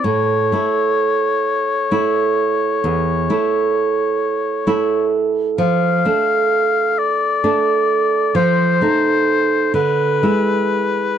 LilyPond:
<<
  \new Staff \with { instrumentName = "Oboe" } { \time 12/8 \key d \dorian \tempo 4. = 43 cis''1~ cis''4. r8 | f''4. d''4. c''4. b'4. | }
  \new Staff \with { instrumentName = "Nylon-string guitar" } { \time 12/8 \key d \dorian a,8 <a e'>4. <a e'>4 e,8 <a e'>4. <a e'>4 | f8 <a d'>4. <a d'>4 f8 <a ees'>4 d8 <gis e'>4 | }
>>